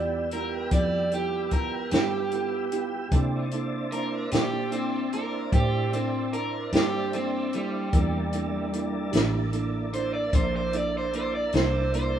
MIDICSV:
0, 0, Header, 1, 6, 480
1, 0, Start_track
1, 0, Tempo, 801068
1, 1870, Time_signature, 12, 3, 24, 8
1, 7305, End_track
2, 0, Start_track
2, 0, Title_t, "Overdriven electric guitar"
2, 0, Program_c, 0, 29
2, 0, Note_on_c, 0, 74, 86
2, 169, Note_off_c, 0, 74, 0
2, 197, Note_on_c, 0, 70, 76
2, 426, Note_off_c, 0, 70, 0
2, 439, Note_on_c, 0, 74, 77
2, 667, Note_off_c, 0, 74, 0
2, 683, Note_on_c, 0, 67, 75
2, 909, Note_off_c, 0, 67, 0
2, 914, Note_on_c, 0, 70, 80
2, 1145, Note_off_c, 0, 70, 0
2, 1147, Note_on_c, 0, 67, 95
2, 2084, Note_off_c, 0, 67, 0
2, 2350, Note_on_c, 0, 70, 91
2, 2583, Note_off_c, 0, 70, 0
2, 2591, Note_on_c, 0, 67, 79
2, 2823, Note_off_c, 0, 67, 0
2, 2828, Note_on_c, 0, 60, 83
2, 3062, Note_off_c, 0, 60, 0
2, 3077, Note_on_c, 0, 70, 88
2, 3306, Note_off_c, 0, 70, 0
2, 3317, Note_on_c, 0, 67, 78
2, 3546, Note_off_c, 0, 67, 0
2, 3556, Note_on_c, 0, 60, 73
2, 3786, Note_off_c, 0, 60, 0
2, 3794, Note_on_c, 0, 70, 77
2, 4025, Note_off_c, 0, 70, 0
2, 4038, Note_on_c, 0, 67, 84
2, 4267, Note_off_c, 0, 67, 0
2, 4287, Note_on_c, 0, 60, 79
2, 4511, Note_off_c, 0, 60, 0
2, 4524, Note_on_c, 0, 55, 84
2, 5453, Note_off_c, 0, 55, 0
2, 5958, Note_on_c, 0, 72, 96
2, 6071, Note_off_c, 0, 72, 0
2, 6075, Note_on_c, 0, 74, 84
2, 6189, Note_off_c, 0, 74, 0
2, 6203, Note_on_c, 0, 72, 87
2, 6314, Note_off_c, 0, 72, 0
2, 6329, Note_on_c, 0, 72, 84
2, 6437, Note_off_c, 0, 72, 0
2, 6454, Note_on_c, 0, 74, 79
2, 6560, Note_off_c, 0, 74, 0
2, 6578, Note_on_c, 0, 72, 80
2, 6682, Note_off_c, 0, 72, 0
2, 6689, Note_on_c, 0, 72, 95
2, 6797, Note_off_c, 0, 72, 0
2, 6803, Note_on_c, 0, 74, 91
2, 6914, Note_off_c, 0, 74, 0
2, 6923, Note_on_c, 0, 72, 85
2, 7151, Note_off_c, 0, 72, 0
2, 7162, Note_on_c, 0, 72, 95
2, 7305, Note_off_c, 0, 72, 0
2, 7305, End_track
3, 0, Start_track
3, 0, Title_t, "Grand piano"
3, 0, Program_c, 1, 0
3, 0, Note_on_c, 1, 59, 52
3, 0, Note_on_c, 1, 64, 48
3, 0, Note_on_c, 1, 65, 51
3, 0, Note_on_c, 1, 67, 58
3, 130, Note_off_c, 1, 65, 0
3, 131, Note_off_c, 1, 59, 0
3, 132, Note_off_c, 1, 64, 0
3, 133, Note_off_c, 1, 67, 0
3, 198, Note_on_c, 1, 65, 47
3, 199, Note_on_c, 1, 59, 49
3, 200, Note_on_c, 1, 67, 55
3, 202, Note_on_c, 1, 64, 46
3, 374, Note_off_c, 1, 59, 0
3, 374, Note_off_c, 1, 65, 0
3, 375, Note_off_c, 1, 67, 0
3, 376, Note_off_c, 1, 64, 0
3, 430, Note_on_c, 1, 59, 50
3, 430, Note_on_c, 1, 64, 45
3, 431, Note_on_c, 1, 69, 55
3, 432, Note_on_c, 1, 65, 45
3, 610, Note_off_c, 1, 59, 0
3, 610, Note_off_c, 1, 64, 0
3, 610, Note_off_c, 1, 69, 0
3, 611, Note_off_c, 1, 65, 0
3, 670, Note_on_c, 1, 59, 50
3, 672, Note_on_c, 1, 64, 45
3, 673, Note_on_c, 1, 65, 46
3, 674, Note_on_c, 1, 69, 54
3, 850, Note_off_c, 1, 59, 0
3, 851, Note_off_c, 1, 64, 0
3, 851, Note_off_c, 1, 65, 0
3, 852, Note_off_c, 1, 69, 0
3, 913, Note_on_c, 1, 59, 49
3, 913, Note_on_c, 1, 65, 45
3, 914, Note_on_c, 1, 64, 47
3, 914, Note_on_c, 1, 81, 57
3, 1091, Note_off_c, 1, 59, 0
3, 1091, Note_off_c, 1, 65, 0
3, 1092, Note_off_c, 1, 64, 0
3, 1092, Note_off_c, 1, 81, 0
3, 1151, Note_on_c, 1, 59, 49
3, 1152, Note_on_c, 1, 64, 44
3, 1152, Note_on_c, 1, 65, 47
3, 1152, Note_on_c, 1, 69, 54
3, 1330, Note_off_c, 1, 59, 0
3, 1331, Note_off_c, 1, 64, 0
3, 1331, Note_off_c, 1, 65, 0
3, 1331, Note_off_c, 1, 69, 0
3, 1391, Note_on_c, 1, 59, 51
3, 1392, Note_on_c, 1, 64, 48
3, 1392, Note_on_c, 1, 69, 56
3, 1393, Note_on_c, 1, 65, 44
3, 1570, Note_off_c, 1, 59, 0
3, 1570, Note_off_c, 1, 64, 0
3, 1571, Note_off_c, 1, 65, 0
3, 1571, Note_off_c, 1, 69, 0
3, 1630, Note_on_c, 1, 59, 51
3, 1631, Note_on_c, 1, 64, 51
3, 1633, Note_on_c, 1, 65, 48
3, 1635, Note_on_c, 1, 67, 58
3, 1810, Note_off_c, 1, 59, 0
3, 1810, Note_off_c, 1, 64, 0
3, 1811, Note_off_c, 1, 65, 0
3, 1812, Note_off_c, 1, 67, 0
3, 1870, Note_on_c, 1, 58, 66
3, 1872, Note_on_c, 1, 62, 63
3, 1872, Note_on_c, 1, 64, 61
3, 1872, Note_on_c, 1, 69, 77
3, 2050, Note_off_c, 1, 58, 0
3, 2051, Note_off_c, 1, 62, 0
3, 2051, Note_off_c, 1, 64, 0
3, 2051, Note_off_c, 1, 69, 0
3, 2112, Note_on_c, 1, 58, 58
3, 2112, Note_on_c, 1, 62, 55
3, 2114, Note_on_c, 1, 64, 53
3, 2115, Note_on_c, 1, 69, 63
3, 2291, Note_off_c, 1, 58, 0
3, 2291, Note_off_c, 1, 62, 0
3, 2292, Note_off_c, 1, 64, 0
3, 2292, Note_off_c, 1, 69, 0
3, 2350, Note_on_c, 1, 81, 58
3, 2351, Note_on_c, 1, 62, 48
3, 2352, Note_on_c, 1, 58, 53
3, 2352, Note_on_c, 1, 64, 48
3, 2530, Note_off_c, 1, 62, 0
3, 2530, Note_off_c, 1, 81, 0
3, 2531, Note_off_c, 1, 58, 0
3, 2531, Note_off_c, 1, 64, 0
3, 2589, Note_on_c, 1, 58, 52
3, 2590, Note_on_c, 1, 62, 48
3, 2591, Note_on_c, 1, 64, 45
3, 2592, Note_on_c, 1, 69, 57
3, 2769, Note_off_c, 1, 58, 0
3, 2770, Note_off_c, 1, 62, 0
3, 2770, Note_off_c, 1, 64, 0
3, 2771, Note_off_c, 1, 69, 0
3, 2821, Note_on_c, 1, 62, 50
3, 2823, Note_on_c, 1, 64, 46
3, 2823, Note_on_c, 1, 69, 61
3, 2825, Note_on_c, 1, 58, 53
3, 3005, Note_off_c, 1, 62, 0
3, 3006, Note_off_c, 1, 64, 0
3, 3006, Note_off_c, 1, 69, 0
3, 3008, Note_off_c, 1, 58, 0
3, 3071, Note_on_c, 1, 58, 50
3, 3073, Note_on_c, 1, 64, 45
3, 3074, Note_on_c, 1, 62, 44
3, 3075, Note_on_c, 1, 81, 54
3, 3251, Note_off_c, 1, 58, 0
3, 3251, Note_off_c, 1, 64, 0
3, 3252, Note_off_c, 1, 62, 0
3, 3252, Note_off_c, 1, 81, 0
3, 3306, Note_on_c, 1, 70, 53
3, 3308, Note_on_c, 1, 64, 45
3, 3310, Note_on_c, 1, 62, 46
3, 3310, Note_on_c, 1, 72, 57
3, 3488, Note_off_c, 1, 70, 0
3, 3489, Note_off_c, 1, 64, 0
3, 3490, Note_off_c, 1, 62, 0
3, 3490, Note_off_c, 1, 72, 0
3, 3551, Note_on_c, 1, 62, 47
3, 3552, Note_on_c, 1, 70, 51
3, 3553, Note_on_c, 1, 64, 49
3, 3555, Note_on_c, 1, 69, 55
3, 3730, Note_off_c, 1, 62, 0
3, 3731, Note_off_c, 1, 64, 0
3, 3731, Note_off_c, 1, 70, 0
3, 3733, Note_off_c, 1, 69, 0
3, 3789, Note_on_c, 1, 81, 57
3, 3790, Note_on_c, 1, 62, 48
3, 3790, Note_on_c, 1, 64, 50
3, 3790, Note_on_c, 1, 70, 56
3, 3970, Note_off_c, 1, 62, 0
3, 3970, Note_off_c, 1, 64, 0
3, 3970, Note_off_c, 1, 70, 0
3, 3970, Note_off_c, 1, 81, 0
3, 4029, Note_on_c, 1, 58, 51
3, 4029, Note_on_c, 1, 67, 54
3, 4030, Note_on_c, 1, 62, 48
3, 4032, Note_on_c, 1, 64, 48
3, 4209, Note_off_c, 1, 58, 0
3, 4209, Note_off_c, 1, 67, 0
3, 4210, Note_off_c, 1, 62, 0
3, 4211, Note_off_c, 1, 64, 0
3, 4271, Note_on_c, 1, 58, 49
3, 4272, Note_on_c, 1, 62, 51
3, 4273, Note_on_c, 1, 69, 60
3, 4275, Note_on_c, 1, 64, 49
3, 4450, Note_off_c, 1, 58, 0
3, 4451, Note_off_c, 1, 62, 0
3, 4451, Note_off_c, 1, 69, 0
3, 4452, Note_off_c, 1, 64, 0
3, 4510, Note_on_c, 1, 62, 50
3, 4511, Note_on_c, 1, 64, 48
3, 4513, Note_on_c, 1, 69, 60
3, 4514, Note_on_c, 1, 58, 55
3, 4690, Note_off_c, 1, 62, 0
3, 4691, Note_off_c, 1, 64, 0
3, 4692, Note_off_c, 1, 58, 0
3, 4692, Note_off_c, 1, 69, 0
3, 4751, Note_on_c, 1, 58, 59
3, 4752, Note_on_c, 1, 62, 53
3, 4753, Note_on_c, 1, 64, 55
3, 4753, Note_on_c, 1, 70, 68
3, 4931, Note_off_c, 1, 58, 0
3, 4931, Note_off_c, 1, 62, 0
3, 4931, Note_off_c, 1, 64, 0
3, 4932, Note_off_c, 1, 70, 0
3, 4990, Note_on_c, 1, 58, 51
3, 4990, Note_on_c, 1, 62, 49
3, 4990, Note_on_c, 1, 64, 47
3, 4992, Note_on_c, 1, 69, 53
3, 5170, Note_off_c, 1, 58, 0
3, 5170, Note_off_c, 1, 62, 0
3, 5170, Note_off_c, 1, 64, 0
3, 5171, Note_off_c, 1, 69, 0
3, 5228, Note_on_c, 1, 64, 59
3, 5228, Note_on_c, 1, 69, 69
3, 5230, Note_on_c, 1, 58, 66
3, 5230, Note_on_c, 1, 62, 59
3, 5409, Note_off_c, 1, 64, 0
3, 5409, Note_off_c, 1, 69, 0
3, 5410, Note_off_c, 1, 62, 0
3, 5411, Note_off_c, 1, 58, 0
3, 5460, Note_on_c, 1, 58, 62
3, 5460, Note_on_c, 1, 64, 57
3, 5461, Note_on_c, 1, 62, 56
3, 5462, Note_on_c, 1, 67, 71
3, 5645, Note_off_c, 1, 64, 0
3, 5646, Note_off_c, 1, 58, 0
3, 5646, Note_off_c, 1, 62, 0
3, 5647, Note_off_c, 1, 67, 0
3, 5705, Note_on_c, 1, 69, 70
3, 5706, Note_on_c, 1, 58, 62
3, 5706, Note_on_c, 1, 64, 58
3, 5707, Note_on_c, 1, 62, 58
3, 5888, Note_off_c, 1, 58, 0
3, 5888, Note_off_c, 1, 69, 0
3, 5889, Note_off_c, 1, 62, 0
3, 5889, Note_off_c, 1, 64, 0
3, 5943, Note_on_c, 1, 58, 51
3, 5944, Note_on_c, 1, 62, 46
3, 5944, Note_on_c, 1, 64, 49
3, 5944, Note_on_c, 1, 69, 54
3, 6127, Note_off_c, 1, 58, 0
3, 6127, Note_off_c, 1, 64, 0
3, 6127, Note_off_c, 1, 69, 0
3, 6128, Note_off_c, 1, 62, 0
3, 6189, Note_on_c, 1, 64, 46
3, 6191, Note_on_c, 1, 58, 51
3, 6191, Note_on_c, 1, 69, 58
3, 6192, Note_on_c, 1, 62, 48
3, 6370, Note_off_c, 1, 64, 0
3, 6371, Note_off_c, 1, 58, 0
3, 6371, Note_off_c, 1, 69, 0
3, 6372, Note_off_c, 1, 62, 0
3, 6428, Note_on_c, 1, 62, 44
3, 6429, Note_on_c, 1, 64, 47
3, 6430, Note_on_c, 1, 58, 48
3, 6432, Note_on_c, 1, 69, 54
3, 6610, Note_off_c, 1, 62, 0
3, 6611, Note_off_c, 1, 58, 0
3, 6611, Note_off_c, 1, 64, 0
3, 6612, Note_off_c, 1, 69, 0
3, 6667, Note_on_c, 1, 58, 55
3, 6668, Note_on_c, 1, 62, 49
3, 6668, Note_on_c, 1, 64, 50
3, 6671, Note_on_c, 1, 69, 56
3, 6850, Note_off_c, 1, 58, 0
3, 6850, Note_off_c, 1, 62, 0
3, 6850, Note_off_c, 1, 64, 0
3, 6852, Note_off_c, 1, 69, 0
3, 6908, Note_on_c, 1, 64, 47
3, 6909, Note_on_c, 1, 58, 52
3, 6909, Note_on_c, 1, 69, 60
3, 6910, Note_on_c, 1, 62, 47
3, 7090, Note_off_c, 1, 58, 0
3, 7090, Note_off_c, 1, 64, 0
3, 7091, Note_off_c, 1, 62, 0
3, 7091, Note_off_c, 1, 69, 0
3, 7149, Note_on_c, 1, 58, 55
3, 7149, Note_on_c, 1, 62, 46
3, 7149, Note_on_c, 1, 69, 57
3, 7150, Note_on_c, 1, 64, 48
3, 7305, Note_off_c, 1, 58, 0
3, 7305, Note_off_c, 1, 62, 0
3, 7305, Note_off_c, 1, 64, 0
3, 7305, Note_off_c, 1, 69, 0
3, 7305, End_track
4, 0, Start_track
4, 0, Title_t, "Tonewheel organ"
4, 0, Program_c, 2, 16
4, 0, Note_on_c, 2, 55, 58
4, 0, Note_on_c, 2, 59, 57
4, 0, Note_on_c, 2, 67, 59
4, 0, Note_on_c, 2, 76, 58
4, 1847, Note_off_c, 2, 76, 0
4, 1848, Note_off_c, 2, 59, 0
4, 1850, Note_off_c, 2, 55, 0
4, 1851, Note_off_c, 2, 67, 0
4, 1876, Note_on_c, 2, 62, 61
4, 1876, Note_on_c, 2, 81, 57
4, 1877, Note_on_c, 2, 64, 56
4, 1878, Note_on_c, 2, 60, 58
4, 4729, Note_off_c, 2, 62, 0
4, 4729, Note_off_c, 2, 81, 0
4, 4730, Note_off_c, 2, 60, 0
4, 4730, Note_off_c, 2, 64, 0
4, 4746, Note_on_c, 2, 62, 60
4, 4748, Note_on_c, 2, 58, 59
4, 4748, Note_on_c, 2, 64, 60
4, 4750, Note_on_c, 2, 81, 55
4, 7305, Note_off_c, 2, 58, 0
4, 7305, Note_off_c, 2, 62, 0
4, 7305, Note_off_c, 2, 64, 0
4, 7305, Note_off_c, 2, 81, 0
4, 7305, End_track
5, 0, Start_track
5, 0, Title_t, "Fingered electric bass"
5, 0, Program_c, 3, 33
5, 0, Note_on_c, 3, 40, 81
5, 408, Note_off_c, 3, 40, 0
5, 429, Note_on_c, 3, 41, 75
5, 1128, Note_off_c, 3, 41, 0
5, 1151, Note_on_c, 3, 43, 85
5, 1849, Note_off_c, 3, 43, 0
5, 1867, Note_on_c, 3, 48, 78
5, 2567, Note_off_c, 3, 48, 0
5, 2590, Note_on_c, 3, 46, 80
5, 3288, Note_off_c, 3, 46, 0
5, 3310, Note_on_c, 3, 45, 75
5, 4009, Note_off_c, 3, 45, 0
5, 4030, Note_on_c, 3, 43, 88
5, 4728, Note_off_c, 3, 43, 0
5, 4753, Note_on_c, 3, 40, 79
5, 5450, Note_off_c, 3, 40, 0
5, 5472, Note_on_c, 3, 33, 89
5, 6170, Note_off_c, 3, 33, 0
5, 6191, Note_on_c, 3, 34, 78
5, 6890, Note_off_c, 3, 34, 0
5, 6913, Note_on_c, 3, 36, 93
5, 7305, Note_off_c, 3, 36, 0
5, 7305, End_track
6, 0, Start_track
6, 0, Title_t, "Drums"
6, 187, Note_on_c, 9, 42, 57
6, 247, Note_off_c, 9, 42, 0
6, 426, Note_on_c, 9, 42, 78
6, 428, Note_on_c, 9, 36, 95
6, 486, Note_off_c, 9, 42, 0
6, 488, Note_off_c, 9, 36, 0
6, 669, Note_on_c, 9, 42, 57
6, 728, Note_off_c, 9, 42, 0
6, 906, Note_on_c, 9, 42, 59
6, 909, Note_on_c, 9, 36, 72
6, 965, Note_off_c, 9, 42, 0
6, 969, Note_off_c, 9, 36, 0
6, 1146, Note_on_c, 9, 42, 82
6, 1162, Note_on_c, 9, 38, 100
6, 1206, Note_off_c, 9, 42, 0
6, 1222, Note_off_c, 9, 38, 0
6, 1387, Note_on_c, 9, 42, 60
6, 1447, Note_off_c, 9, 42, 0
6, 1629, Note_on_c, 9, 42, 61
6, 1689, Note_off_c, 9, 42, 0
6, 1867, Note_on_c, 9, 42, 80
6, 1868, Note_on_c, 9, 36, 103
6, 1927, Note_off_c, 9, 42, 0
6, 1928, Note_off_c, 9, 36, 0
6, 2106, Note_on_c, 9, 42, 58
6, 2166, Note_off_c, 9, 42, 0
6, 2349, Note_on_c, 9, 42, 56
6, 2409, Note_off_c, 9, 42, 0
6, 2585, Note_on_c, 9, 42, 76
6, 2602, Note_on_c, 9, 38, 99
6, 2645, Note_off_c, 9, 42, 0
6, 2662, Note_off_c, 9, 38, 0
6, 2827, Note_on_c, 9, 42, 51
6, 2887, Note_off_c, 9, 42, 0
6, 3072, Note_on_c, 9, 42, 54
6, 3132, Note_off_c, 9, 42, 0
6, 3310, Note_on_c, 9, 36, 106
6, 3311, Note_on_c, 9, 42, 73
6, 3370, Note_off_c, 9, 36, 0
6, 3371, Note_off_c, 9, 42, 0
6, 3554, Note_on_c, 9, 42, 52
6, 3614, Note_off_c, 9, 42, 0
6, 3794, Note_on_c, 9, 42, 53
6, 3854, Note_off_c, 9, 42, 0
6, 4030, Note_on_c, 9, 42, 74
6, 4046, Note_on_c, 9, 38, 99
6, 4090, Note_off_c, 9, 42, 0
6, 4106, Note_off_c, 9, 38, 0
6, 4273, Note_on_c, 9, 42, 57
6, 4333, Note_off_c, 9, 42, 0
6, 4511, Note_on_c, 9, 42, 57
6, 4571, Note_off_c, 9, 42, 0
6, 4751, Note_on_c, 9, 42, 76
6, 4752, Note_on_c, 9, 36, 100
6, 4811, Note_off_c, 9, 42, 0
6, 4812, Note_off_c, 9, 36, 0
6, 4990, Note_on_c, 9, 42, 60
6, 5049, Note_off_c, 9, 42, 0
6, 5234, Note_on_c, 9, 42, 60
6, 5294, Note_off_c, 9, 42, 0
6, 5469, Note_on_c, 9, 42, 81
6, 5486, Note_on_c, 9, 38, 102
6, 5529, Note_off_c, 9, 42, 0
6, 5545, Note_off_c, 9, 38, 0
6, 5709, Note_on_c, 9, 42, 59
6, 5769, Note_off_c, 9, 42, 0
6, 5953, Note_on_c, 9, 42, 62
6, 6013, Note_off_c, 9, 42, 0
6, 6190, Note_on_c, 9, 36, 104
6, 6190, Note_on_c, 9, 42, 78
6, 6250, Note_off_c, 9, 36, 0
6, 6250, Note_off_c, 9, 42, 0
6, 6430, Note_on_c, 9, 42, 57
6, 6490, Note_off_c, 9, 42, 0
6, 6671, Note_on_c, 9, 42, 57
6, 6731, Note_off_c, 9, 42, 0
6, 6906, Note_on_c, 9, 42, 72
6, 6922, Note_on_c, 9, 38, 108
6, 6966, Note_off_c, 9, 42, 0
6, 6982, Note_off_c, 9, 38, 0
6, 7153, Note_on_c, 9, 42, 60
6, 7213, Note_off_c, 9, 42, 0
6, 7305, End_track
0, 0, End_of_file